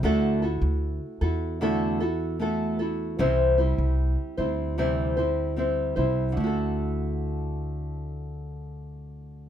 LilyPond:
<<
  \new Staff \with { instrumentName = "Nylon-string guitar" } { \time 4/4 \key d \mixolydian \tempo 4 = 76 <d a e' fis' a'>8 <e' fis' a'>4 <e' fis' a'>8 <d a e' fis' a'>8 <e' fis' a'>8 <a e' fis' a'>8 <e' fis' a'>8 | <c e g c' e' c''>8 <g c' e' c''>4 <g c' e' c''>8 <c e g c' e' c''>8 <g c' e' c''>8 <g c' e' c''>8 <g c' e' c''>8 | <d a e' fis' a'>1 | }
  \new Staff \with { instrumentName = "Upright bass" } { \clef bass \time 4/4 \key d \mixolydian d,8. d,8 r16 e,2~ e,8 | c,8. c,8 r16 d,2 c,8 | d,1 | }
>>